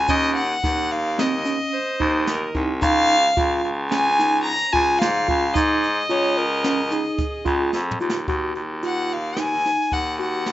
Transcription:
0.00 0.11 G#5 medium
0.08 0.55 D#2 loud
0.08 0.41 C#4 medium
0.08 0.36 D#5 medium
0.08 kick medium
0.08 closed hi-hat medium
0.08 shaker medium
0.36 0.93 F#5 medium
0.36 closed hi-hat medium
0.36 shaker soft
0.64 1.57 D#2 medium
0.64 0.96 D#4 medium
0.64 kick loud
0.64 snare soft
0.64 closed hi-hat medium
0.91 1.21 F5 medium
0.91 closed hi-hat medium
1.18 1.34 C4 medium
1.18 2.56 D#5 medium
1.18 snare loud
1.18 closed hi-hat medium
1.45 1.78 C#4 medium
1.45 closed hi-hat medium
1.45 shaker soft
1.73 2.24 C5 medium
1.73 closed hi-hat medium
2.00 2.47 D#2 loud
2.00 2.32 D#4 medium
2.00 kick medium
2.00 closed hi-hat medium
2.27 2.66 A#4 medium
2.27 snare medium
2.27 closed hi-hat medium
2.54 2.78 C2 medium
2.54 2.71 D#4 medium
2.54 kick medium
2.54 closed hi-hat medium
2.82 3.29 C#2 loud
2.82 3.14 D#4 medium
2.82 3.60 F5 loud
2.82 kick loud
2.82 closed hi-hat medium
2.82 shaker soft
3.37 3.60 C#2 medium
3.37 3.69 F4 medium
3.37 kick loud
3.37 closed hi-hat medium
3.64 4.57 C#2 medium
3.64 closed hi-hat medium
3.91 4.08 C#4 medium
3.91 4.42 G#5 medium
3.91 snare loud
3.91 closed hi-hat medium
4.19 4.51 D#4 medium
4.19 snare soft
4.19 closed hi-hat medium
4.19 shaker soft
4.44 4.74 A#5 loud
4.44 closed hi-hat medium
4.73 4.97 C#2 medium
4.73 5.05 F4 medium
4.73 5.00 G#5 medium
4.73 kick medium
4.73 closed hi-hat medium
4.98 5.24 G#2 medium
4.98 5.55 F5 medium
4.98 snare loud
4.98 closed hi-hat medium
5.28 5.52 C#2 medium
5.28 5.44 F4 medium
5.28 kick medium
5.28 closed hi-hat medium
5.54 6.02 G#2 loud
5.54 5.87 D#4 medium
5.54 7.73 D#5 medium
5.54 kick loud
5.54 closed hi-hat medium
5.54 shaker medium
5.83 closed hi-hat medium
5.83 shaker soft
6.09 7.03 C#2 medium
6.09 6.42 F4 medium
6.09 6.39 C#5 loud
6.09 closed hi-hat medium
6.09 shaker soft
6.37 6.94 A#4 medium
6.37 closed hi-hat medium
6.37 shaker soft
6.64 6.80 C#4 medium
6.64 snare loud
6.64 closed hi-hat medium
6.64 shaker soft
6.91 7.23 D#4 medium
6.91 8.01 G#4 medium
6.91 closed hi-hat medium
6.91 shaker soft
7.18 kick medium
7.18 closed hi-hat medium
7.18 shaker soft
7.45 7.69 C#2 medium
7.45 7.78 F4 medium
7.45 kick medium
7.45 closed hi-hat medium
7.73 7.98 F2 medium
7.73 snare medium
7.91 mid tom medium
8.00 8.25 D#2 medium
8.00 8.17 F4 medium
8.00 shaker soft
8.10 snare medium
8.28 8.51 D#2 medium
8.28 8.61 F#4 medium
8.28 kick loud
8.28 closed hi-hat medium
8.55 9.71 D#2 medium
8.55 closed hi-hat medium
8.83 9.15 F4 medium
8.83 9.14 F#5 medium
8.83 closed hi-hat medium
9.09 9.41 F5 medium
9.09 closed hi-hat medium
9.37 9.54 D#4 medium
9.37 9.95 G#5 loud
9.37 snare loud
9.37 closed hi-hat medium
9.65 9.98 D#4 medium
9.65 snare soft
9.65 closed hi-hat medium
9.92 10.52 D#2 medium
9.92 10.20 F#5 medium
9.92 kick medium
9.92 closed hi-hat medium
10.19 10.51 F#4 medium
10.19 10.52 F#5 medium
10.19 closed hi-hat medium
10.46 snare medium
10.46 closed hi-hat medium

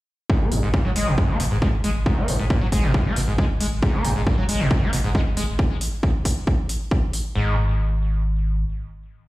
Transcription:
0.30 0.42 G#2 loud
0.30 kick loud
0.41 0.51 G#1 medium
0.41 0.53 B3 medium
0.52 0.62 G#1 loud
0.52 0.61 F#2 medium
0.52 open hi-hat loud
0.63 0.73 G#1 medium
0.63 0.69 G#2 medium
0.74 0.83 A#2 medium
0.74 kick loud
0.85 0.95 G#1 medium
0.85 0.91 F#3 loud
0.96 1.06 G#1 loud
0.96 1.09 G#3 medium
0.96 open hi-hat loud
1.07 1.18 G#1 medium
1.07 1.16 B2 medium
1.18 1.31 F#2 medium
1.18 kick loud
1.29 1.39 G#1 medium
1.29 1.38 B3 medium
1.40 1.50 G#1 loud
1.40 1.44 B2 medium
1.40 open hi-hat loud
1.51 1.62 G#1 medium
1.51 1.57 G#2 medium
1.62 1.68 G#3 loud
1.62 kick loud
1.73 1.83 G#1 medium
1.84 1.95 G#1 loud
1.84 1.90 G#3 medium
1.84 open hi-hat loud
1.95 2.06 G#1 medium
2.06 2.19 G#2 loud
2.06 kick loud
2.17 2.27 G#1 medium
2.17 2.30 B3 medium
2.28 2.39 G#1 loud
2.28 2.37 F#2 medium
2.28 open hi-hat loud
2.39 2.50 G#1 medium
2.39 2.45 G#2 medium
2.50 2.60 A#2 medium
2.50 kick loud
2.61 2.72 G#1 medium
2.61 2.67 F#3 loud
2.72 2.83 G#1 medium
2.72 2.85 G#3 medium
2.72 kick medium
2.72 open hi-hat loud
2.84 2.94 G#1 medium
2.84 2.92 B2 medium
2.94 3.07 F#2 medium
2.94 kick loud
3.06 3.16 G#1 medium
3.06 3.15 B3 medium
3.16 3.27 G#1 loud
3.16 3.20 B2 medium
3.16 open hi-hat loud
3.28 3.38 G#1 medium
3.28 3.34 G#2 medium
3.38 3.45 G#3 loud
3.38 kick loud
3.50 3.60 G#1 medium
3.60 3.71 G#1 loud
3.60 3.67 G#3 medium
3.60 open hi-hat loud
3.72 3.82 G#1 medium
3.83 3.95 G#2 loud
3.83 kick loud
3.94 4.04 G#1 medium
3.94 4.06 B3 medium
4.05 4.15 G#1 loud
4.05 4.14 F#2 medium
4.05 open hi-hat loud
4.16 4.26 G#1 medium
4.16 4.22 G#2 medium
4.27 4.36 A#2 medium
4.27 kick loud
4.38 4.48 G#1 medium
4.38 4.44 F#3 loud
4.49 4.59 G#1 loud
4.49 4.61 G#3 medium
4.49 open hi-hat loud
4.60 4.71 G#1 medium
4.60 4.69 B2 medium
4.71 4.84 F#2 medium
4.71 kick loud
4.82 4.92 G#1 medium
4.82 4.91 B3 medium
4.93 5.03 G#1 loud
4.93 4.97 B2 medium
4.93 open hi-hat loud
5.04 5.15 G#1 medium
5.04 5.10 G#2 medium
5.15 5.21 G#3 loud
5.15 kick loud
5.26 5.36 G#1 medium
5.37 5.47 G#1 loud
5.37 5.43 G#3 medium
5.37 open hi-hat loud
5.48 5.59 G#1 medium
5.59 kick loud
5.81 open hi-hat loud
6.03 kick loud
6.25 kick medium
6.25 open hi-hat loud
6.47 kick loud
6.69 open hi-hat loud
6.91 kick loud
7.13 open hi-hat loud
7.35 8.64 G#1 loud
7.35 7.56 G#2 medium

